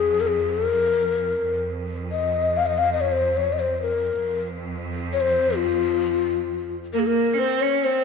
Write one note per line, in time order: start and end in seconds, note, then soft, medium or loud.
0.00 1.41 F2 medium
0.00 0.22 G#4 loud
0.21 0.29 A#4 loud
0.28 0.51 G#4 medium
0.50 1.63 A#4 loud
1.42 4.16 F2 medium
2.12 2.58 D#5 medium
2.57 2.68 F5 loud
2.66 2.80 D#5 loud
2.78 2.92 F5 loud
2.93 3.02 D#5 medium
3.01 3.13 C#5 medium
3.12 3.38 C5 medium
3.37 3.54 C#5 medium
3.53 3.61 D#5 medium
3.59 3.81 C5 medium
3.82 4.40 A#4 medium
4.17 6.98 F2 medium
5.13 5.22 C#5 medium
5.21 5.58 C5 loud
5.57 6.74 F4 loud
6.93 7.06 A#3 medium
6.93 7.01 A#4 medium
6.99 7.08 G#4 medium
7.06 7.35 A#3 medium
7.06 7.41 A#4 medium
7.34 7.39 C#4 medium
7.38 7.64 C4 medium
7.38 7.62 C5 medium
7.61 7.87 C#4 medium
7.61 7.86 C#5 medium
7.84 8.04 C4 medium
7.84 8.04 C5 medium